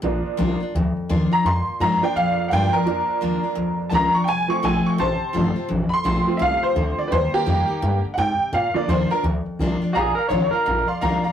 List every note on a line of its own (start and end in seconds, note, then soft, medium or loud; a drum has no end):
0.02 0.25 A#1 medium
0.02 0.71 A#2 loud
0.02 0.58 F3 medium
0.02 0.58 A#3 soft
0.02 0.58 D4 medium
0.26 muted upright bass stroke medium
0.37 0.61 C2 loud
0.37 0.59 F3 loud
0.37 0.60 A#3 medium
0.37 0.60 D4 loud
0.37 0.59 F4 loud
0.60 0.74 D4 medium
0.60 0.73 F4 medium
0.60 muted upright bass stroke medium
0.75 0.96 D2 medium
0.75 1.43 F2 loud
0.96 muted upright bass stroke medium
1.09 1.31 D#2 loud
1.09 1.30 F3 medium
1.09 1.31 A#3 medium
1.09 1.31 D4 medium
1.09 1.30 F4 loud
1.31 1.45 D4 medium
1.31 1.44 F4 medium
1.31 1.45 A#5 loud
1.31 muted upright bass stroke medium
1.45 1.66 F2 loud
1.45 2.13 A#2 loud
1.45 1.80 C6 medium
1.67 muted upright bass stroke medium
1.80 2.01 G#2 loud
1.80 2.01 F3 medium
1.80 2.02 A#3 medium
1.80 2.02 D4 medium
1.80 2.01 F4 loud
1.80 2.02 A#5 loud
2.02 2.84 F3 medium
2.02 2.85 A#3 medium
2.02 2.85 D4 medium
2.02 2.16 D4 medium
2.02 2.15 F4 medium
2.02 2.16 G5 loud
2.02 muted upright bass stroke medium
2.16 2.84 F2 medium
2.16 2.36 A#2 medium
2.16 2.50 F5 loud
2.38 muted upright bass stroke soft
2.48 2.72 G2 loud
2.48 2.72 F3 medium
2.48 2.51 F#5 medium
2.53 2.73 A#3 medium
2.53 2.73 D4 loud
2.53 2.72 F4 loud
2.53 2.73 G5 loud
2.73 2.87 D4 medium
2.73 2.86 F4 medium
2.73 3.76 A#4 loud
2.73 muted upright bass stroke medium
2.86 3.07 F2 medium
2.86 3.55 A#2 medium
2.86 4.24 F3 medium
2.86 4.24 A#3 medium
2.86 4.24 D4 medium
3.08 muted upright bass stroke soft
3.21 3.43 D#2 loud
3.21 3.42 F3 medium
3.21 3.43 A#3 loud
3.21 3.43 D4 medium
3.21 3.42 F4 loud
3.43 3.57 D4 soft
3.43 3.56 F4 medium
3.55 3.78 D2 medium
3.55 4.24 F2 medium
3.79 muted upright bass stroke soft
3.90 4.13 C#2 loud
3.90 4.13 F3 medium
3.90 4.13 A#3 medium
3.90 4.13 D4 medium
3.90 4.12 F4 loud
3.90 3.92 A5 medium
3.94 4.15 A#5 loud
4.13 4.28 D4 medium
4.13 4.27 F4 medium
4.13 4.28 C#6 medium
4.13 muted upright bass stroke medium
4.24 4.48 C2 medium
4.24 4.96 F2 loud
4.24 4.27 G5 medium
4.29 4.50 G#5 loud
4.48 4.70 F3 medium
4.48 4.71 A3 medium
4.48 4.71 C4 medium
4.48 4.63 C#6 loud
4.48 muted upright bass stroke soft
4.62 4.85 A#1 loud
4.62 4.97 F3 medium
4.62 4.97 A3 medium
4.62 4.97 C4 loud
4.62 4.98 F4 loud
4.62 4.85 G#5 loud
4.86 4.99 C#6 medium
4.86 muted upright bass stroke medium
4.98 5.21 A1 medium
4.98 5.67 C3 medium
4.98 5.66 C5 medium
4.98 5.68 A5 loud
5.21 muted upright bass stroke medium
5.33 5.56 G1 loud
5.33 5.55 F3 medium
5.33 5.55 A3 medium
5.33 5.55 C4 loud
5.33 5.55 F4 medium
5.56 5.70 C4 medium
5.56 5.69 F4 medium
5.56 muted upright bass stroke medium
5.69 5.92 A1 medium
5.69 6.37 F2 loud
5.89 5.91 B5 medium
5.89 muted upright bass stroke medium
5.94 6.04 C6 loud
6.04 6.27 A#1 loud
6.04 6.39 F3 medium
6.04 6.39 A3 medium
6.04 6.39 C4 loud
6.04 6.40 F4 loud
6.04 6.40 C6 loud
6.27 7.08 F3 medium
6.27 7.08 A3 medium
6.27 7.08 C4 medium
6.27 muted upright bass stroke medium
6.37 6.62 C2 medium
6.37 6.74 C3 medium
6.37 6.40 E5 medium
6.42 6.63 F5 loud
6.63 6.97 C5 medium
6.63 muted upright bass stroke medium
6.76 6.97 D2 loud
6.76 7.10 D3 medium
6.98 7.11 D5 loud
6.98 muted upright bass stroke medium
7.08 7.33 D#2 medium
7.08 7.37 D#3 medium
7.08 7.37 G3 medium
7.08 7.32 A#3 medium
7.08 7.11 B4 medium
7.12 7.80 D#3 loud
7.12 7.33 C5 loud
7.33 8.01 A#3 loud
7.33 8.03 G4 loud
7.33 muted upright bass stroke medium
7.46 7.68 F2 loud
7.46 7.68 G3 medium
7.46 7.68 A#3 medium
7.46 7.68 D#4 loud
7.46 7.67 G4 medium
7.68 7.82 D#4 soft
7.68 7.81 G4 medium
7.82 8.04 G2 medium
7.82 8.17 D3 medium
8.04 muted upright bass stroke medium
8.14 8.38 G#2 loud
8.14 8.52 C3 medium
8.14 8.17 F#5 medium
8.19 8.53 G5 loud
8.39 muted upright bass stroke medium
8.53 8.74 A#2 medium
8.53 9.21 A#2 medium
8.53 8.75 F5 medium
8.74 8.96 D3 medium
8.74 8.96 F3 medium
8.74 8.96 A#3 medium
8.74 8.89 D5 loud
8.74 muted upright bass stroke medium
8.88 9.09 D#2 loud
8.88 9.10 F3 medium
8.88 9.10 A#3 medium
8.88 9.11 D4 loud
8.88 9.09 F4 medium
8.88 9.11 C5 medium
9.10 9.24 D4 medium
9.10 9.24 F4 medium
9.10 9.24 A#4 loud
9.10 muted upright bass stroke medium
9.23 9.45 D2 medium
9.23 9.93 F2 medium
9.46 muted upright bass stroke medium
9.59 9.81 C2 loud
9.59 9.81 F3 medium
9.59 9.82 A#3 medium
9.59 9.82 D4 loud
9.59 9.80 F4 loud
9.82 9.96 D4 medium
9.82 9.95 F4 medium
9.82 muted upright bass stroke medium
9.93 10.16 A#1 medium
9.93 10.15 G#4 loud
9.93 10.08 D5 loud
9.93 10.08 F5 medium
9.93 10.09 A#5 loud
10.15 10.28 A#4 medium
10.15 10.25 D5 medium
10.15 10.26 F5 medium
10.15 10.26 A#5 medium
10.15 muted upright bass stroke medium
10.29 10.52 G#1 loud
10.29 10.51 F3 medium
10.29 10.52 A#3 medium
10.29 10.52 D4 medium
10.29 10.51 F4 medium
10.29 10.51 C#5 medium
10.29 10.44 D5 medium
10.29 10.44 F5 medium
10.29 10.44 C6 medium
10.51 10.67 D4 medium
10.51 10.66 F4 medium
10.51 10.86 A#4 loud
10.51 10.61 D5 medium
10.51 10.61 F5 medium
10.51 10.61 A#5 medium
10.51 muted upright bass stroke medium
10.65 10.88 A#1 medium
10.65 11.32 F2 medium
10.65 10.79 D5 medium
10.65 10.79 F5 medium
10.65 10.80 A#5 medium
10.87 10.96 D5 loud
10.87 10.96 F5 medium
10.87 10.97 C6 loud
10.87 muted upright bass stroke medium
11.01 11.24 C2 medium
11.01 11.23 F3 medium
11.01 11.23 A#3 medium
11.01 11.23 D4 loud
11.01 11.23 F4 medium
11.01 11.15 D5 loud
11.01 11.15 F5 loud
11.01 11.15 A#5 loud
11.22 11.32 D4 medium
11.22 11.32 F4 medium
11.22 11.31 D5 medium
11.22 11.32 F5 medium
11.22 11.32 A#5 loud
11.22 muted upright bass stroke medium